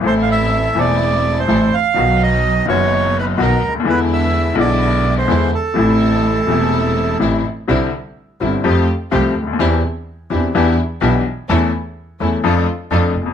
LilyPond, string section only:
\new Staff \with { instrumentName = "String section" } { \time 4/4 \key a \minor \tempo 4 = 126 <a c' e'>4. <a c' e'>4. <a c' e'>8 r8 | <fis b dis'>4. <fis b dis'>4. <fis b dis'>8 r8 | <gis d' e'>4. <gis d' e'>4. <gis d' e'>8 r8 | <a c' e'>4. <a c' e'>4. <a c' e'>8 r8 |
\key c \major <c' d' e'>8 r4 <c' d' e'>8 <a f' g'>8 r8 <a f' g'>8 r8 | <c' d' e'>8 r4 <c' d' e'>8 <g d' e'>8 r8 <g d' e'>8 r8 | <a cis' e'>8 r4 <a cis' e'>8 <a d' f'>8 r8 <a d' f'>8 r8 | }